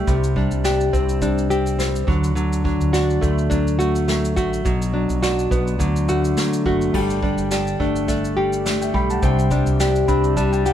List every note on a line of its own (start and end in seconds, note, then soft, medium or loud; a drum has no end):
0.00 1.28 G3 medium
0.00 0.14 A3 medium
0.00 0.36 D4 medium
0.00 0.64 D4 medium
0.00 0.14 G4 medium
0.07 0.48 C2 medium
0.07 2.07 C3 medium
0.07 0.35 G3 medium
0.07 kick medium
0.07 shaker soft
0.24 shaker soft
0.36 1.21 G3 medium
0.36 1.22 D4 medium
0.36 kick medium
0.51 0.90 C2 medium
0.51 shaker soft
0.64 2.93 D4 medium
0.64 1.49 G4 medium
0.64 snare medium
0.64 shaker medium
0.80 shaker soft
0.93 2.04 C2 medium
0.93 1.49 C4 medium
0.93 1.77 C4 medium
0.93 kick medium
0.93 shaker soft
1.09 shaker soft
1.22 1.78 G3 medium
1.22 2.64 D4 medium
1.22 kick medium
1.22 shaker medium
1.38 shaker soft
1.50 2.14 C4 medium
1.50 2.14 G4 medium
1.50 shaker soft
1.66 shaker medium
1.79 2.07 G3 medium
1.79 2.14 C4 medium
1.79 snare loud
1.79 shaker medium
1.96 shaker soft
2.07 2.77 D2 medium
2.07 2.35 D3 medium
2.07 2.36 F#3 medium
2.07 kick loud
2.24 shaker soft
2.35 4.64 D3 medium
2.35 2.65 F#3 medium
2.35 shaker soft
2.53 shaker soft
2.64 3.50 F#3 medium
2.64 3.49 D4 soft
2.64 kick medium
2.81 3.19 D2 medium
2.81 shaker soft
2.93 5.23 D4 medium
2.93 3.78 F#4 medium
2.93 snare medium
2.93 shaker medium
3.10 shaker soft
3.21 4.33 D2 medium
3.21 4.07 A3 soft
3.21 3.78 A3 soft
3.21 kick medium
3.21 shaker soft
3.38 shaker soft
3.50 4.08 F#3 medium
3.50 4.93 D4 medium
3.50 kick medium
3.50 shaker medium
3.67 shaker soft
3.79 4.36 A3 medium
3.79 4.36 F#4 medium
3.79 shaker soft
3.95 shaker soft
4.08 4.65 F#3 soft
4.08 4.72 A3 medium
4.08 snare medium
4.08 shaker medium
4.25 shaker medium
4.36 4.63 A1 medium
4.36 4.72 A3 medium
4.36 5.22 F#4 soft
4.36 kick medium
4.36 shaker soft
4.53 shaker soft
4.65 5.06 B1 medium
4.65 5.79 B2 medium
4.65 4.94 F#3 medium
4.65 kick medium
4.65 shaker soft
4.82 shaker medium
4.94 5.79 F#3 soft
4.94 7.23 D4 soft
5.09 5.48 B1 medium
5.09 shaker soft
5.22 7.51 D4 medium
5.22 5.86 F#4 medium
5.22 snare medium
5.22 shaker medium
5.39 shaker soft
5.51 5.80 B1 medium
5.51 5.86 B3 soft
5.51 kick medium
5.51 shaker soft
5.67 shaker soft
5.79 6.33 D2 medium
5.79 9.23 D3 medium
5.79 6.36 F#3 medium
5.79 kick medium
5.79 shaker medium
5.96 shaker soft
6.09 6.66 A3 medium
6.09 6.65 F#4 medium
6.09 shaker medium
6.24 shaker soft
6.37 6.94 F#3 soft
6.37 7.54 A3 soft
6.37 snare loud
6.37 shaker medium
6.53 shaker medium
6.66 6.92 F#1 medium
6.66 7.26 A3 soft
6.66 7.01 F#4 soft
6.66 kick medium
6.81 shaker soft
6.92 7.35 G1 medium
6.92 10.37 G3 medium
6.92 7.22 G3 medium
6.92 9.18 D4 medium
6.92 9.19 A4 medium
6.92 8.63 G5 medium
6.92 kick medium
6.92 crash medium
7.10 shaker soft
7.23 8.37 G3 soft
7.23 7.80 D4 soft
7.23 kick medium
7.38 7.76 G1 medium
7.38 shaker soft
7.51 8.08 D4 medium
7.51 8.36 G4 medium
7.51 snare loud
7.51 shaker medium
7.67 shaker soft
7.80 8.90 G1 medium
7.80 8.65 A3 medium
7.80 8.65 D4 soft
7.80 kick medium
7.96 shaker soft
8.08 9.29 A3 medium
8.08 9.80 D4 medium
8.08 kick medium
8.08 snare soft
8.08 shaker medium
8.25 shaker soft
8.37 8.94 G3 medium
8.37 8.94 G4 medium
8.53 shaker medium
8.65 9.29 A3 medium
8.65 9.51 D4 medium
8.65 snare loud
8.65 shaker medium
8.81 8.94 E5 soft
8.81 8.93 G5 medium
8.81 shaker medium
8.94 9.21 B1 medium
8.94 9.22 G3 medium
8.94 9.29 G4 medium
8.94 9.09 G5 soft
8.94 9.09 B5 medium
8.94 kick medium
9.10 9.38 F#5 soft
9.10 9.37 A5 medium
9.10 shaker soft
9.21 9.63 C2 loud
9.21 10.73 C3 medium
9.21 9.50 G3 medium
9.21 10.73 D4 medium
9.21 10.73 C5 medium
9.21 10.51 G5 medium
9.21 kick loud
9.21 shaker soft
9.39 shaker soft
9.51 10.64 G3 medium
9.51 10.08 D4 medium
9.51 kick medium
9.51 shaker soft
9.66 10.05 C2 medium
9.66 shaker soft
9.80 10.37 D4 medium
9.80 10.65 G4 medium
9.80 snare loud
9.80 shaker medium
9.96 shaker soft
10.08 10.73 C2 medium
10.08 10.73 C4 medium
10.08 10.73 D4 medium
10.08 10.35 B5 medium
10.08 kick medium
10.08 shaker soft
10.24 shaker soft
10.37 10.73 G3 medium
10.37 10.73 D4 medium
10.37 10.51 A5 medium
10.37 kick medium
10.37 shaker medium
10.52 10.64 G5 medium
10.52 shaker soft
10.66 10.73 G3 medium
10.66 10.73 G4 medium
10.66 10.73 F#5 medium
10.66 shaker medium